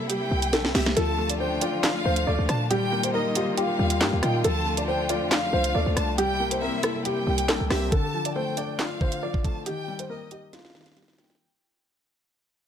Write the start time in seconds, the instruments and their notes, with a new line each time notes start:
Already playing: string section C3 G3 A#3 E4
0.09 grand piano G4, violin section G5, closed hi-hat
0.31 808-style bass C2
0.42 closed hi-hat
0.53 808-style bass A#1, grand piano A4, snare, closed hi-hat
0.65 808-style bass C2, snare
0.75 808-style bass C2, grand piano G4, violin section E5, snare, open hi-hat
0.86 snare
0.96 808-style bass D2, string section D3 F3 A3 F4, felt piano F3, grand piano A4, violin section A5, closed hi-hat
1.18 felt piano A3
1.29 grand piano D5, closed hi-hat
1.40 felt piano D4, grand piano C5, violin section G5
1.61 felt piano F4, grand piano D5, closed hi-hat
1.84 violin section F5, felt piano F5, snare, clap, closed hi-hat
2.05 808-style bass D2, felt piano F3, grand piano C5
2.16 closed hi-hat
2.27 808-style bass D2, felt piano A3, grand piano D5
2.39 808-style bass D2
2.49 808-style bass A#2, felt piano D4, violin section A5, cross-stick, closed hi-hat
2.71 string section D#3 G3 A#3 F4, felt piano G3, grand piano G4, violin section G5, closed hi-hat
2.92 felt piano A#3
3.03 grand piano C5, closed hi-hat
3.14 felt piano D#4, grand piano A#4, violin section D#5
3.35 felt piano F4, grand piano G4, closed hi-hat
3.47 808-style bass D#3
3.57 grand piano F4, felt piano G4, violin section F5, closed hi-hat
3.63 808-style bass A#2
3.79 808-style bass D#2, felt piano G3
3.90 closed hi-hat
4.01 808-style bass G2, felt piano A#3, grand piano G4, snare, clap, closed hi-hat
4.13 808-style bass D#2
4.23 808-style bass A#2, felt piano D#4, grand piano F4, violin section G5, cross-stick, closed hi-hat
4.44 808-style bass D2, string section D3 F3 A3, felt piano F3, grand piano A4, violin section A5, closed hi-hat
4.66 felt piano A3
4.77 grand piano D5, closed hi-hat
4.88 felt piano D4, grand piano C5, violin section G5
5.09 felt piano F4, grand piano D5, closed hi-hat
5.21 808-style bass F2
5.31 violin section F5, felt piano F5, snare, clap, closed hi-hat
5.53 808-style bass C2, felt piano F3, grand piano C5
5.64 closed hi-hat
5.75 808-style bass D2, felt piano A3, grand piano D5
5.86 808-style bass D2
5.96 808-style bass C2, felt piano D4, violin section A5, cross-stick, closed hi-hat
6.18 string section C3 G3 A#3 E4, felt piano G3, grand piano G4, violin section G5, closed hi-hat
6.40 felt piano A#3
6.51 grand piano C5, closed hi-hat
6.62 felt piano C4, grand piano A#4, violin section E5
6.83 felt piano E4, grand piano A4, cross-stick, closed hi-hat
7.05 felt piano G4, grand piano G4, violin section G5, closed hi-hat
7.27 808-style bass C2, felt piano G3
7.38 closed hi-hat
7.49 808-style bass A#1, felt piano A#3, grand piano A4, snare, clap, closed hi-hat
7.60 808-style bass C2
7.70 808-style bass C2, felt piano C4, grand piano G4, violin section E5, cross-stick, snare, open hi-hat
7.92 felt piano D3, grand piano A4, violin section A5, kick, closed hi-hat
8.14 felt piano F3
8.25 grand piano D5, closed hi-hat
8.36 felt piano A3, grand piano C5, violin section G5
8.57 felt piano D4, grand piano D5, closed hi-hat
8.79 felt piano F4, violin section F5, snare, clap, closed hi-hat
9.01 felt piano D3, grand piano C5, kick
9.12 closed hi-hat
9.23 felt piano F3, grand piano D5
9.34 kick
9.44 felt piano A3, violin section A5, kick, closed hi-hat
9.66 felt piano D#3, grand piano G4, violin section G5, closed hi-hat
9.88 felt piano G3
9.99 grand piano C5, closed hi-hat
10.10 felt piano A#3, grand piano A#4, violin section D#5
10.31 felt piano D#4, grand piano G4, closed hi-hat
10.53 grand piano F4, felt piano F4, violin section F5, snare, closed hi-hat
10.59 snare
10.65 snare
10.70 snare
10.75 felt piano D#3, snare
10.81 snare
10.86 snare, closed hi-hat
10.92 snare
10.97 felt piano G3, grand piano G4, snare, closed hi-hat
11.02 snare
11.08 snare
11.13 snare
11.18 felt piano A#3, grand piano F4, violin section G5, snare, closed hi-hat
11.24 snare
11.30 snare
11.35 snare